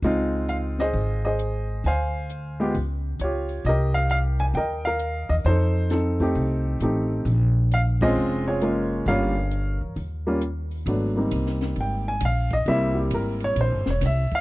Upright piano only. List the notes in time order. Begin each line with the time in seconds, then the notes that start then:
0.04 G#3 C4 D#4 F4
0.49 F5
0.80 G#4 C5 D#5
1.25 G#4 C5 D#5
1.86 C5 F5 G#5
2.60 G#3 B3 F4 G4
3.21 F4 G4 C#5
3.66 G4 A#4 D#5
3.94 F5
4.11 F5
4.40 G#5
4.55 A#4 D#5 G5
4.85 A#4 F5
5.29 D#5
5.46 D#4 A4 C5
5.91 C4 D#4 A4
6.20 A3 C4 D#4 G4
6.82 A3 C4 D#4 G4
7.74 F5
8.02 G#3 C4 C#4 F4 G#4 C5 D#5
8.48 F4 G#4 C#5
8.62 G#3 A#3 C#4 F4
9.08 G3 A#3 C#4 F4 A#4 C#5 F5
10.27 G3 A#3 C#4 F4
10.87 F#3 A3 B3 D4
11.16 G3 A#3 C4 D#4
11.81 G5
12.08 G#5
12.25 F5
12.53 D#5
12.68 G3 A#3 C4 E4 E5
12.94 F#4
12.98 G4
13.14 A#4
13.44 C#5
13.61 C5
13.90 C#5
14.06 E5
14.35 F5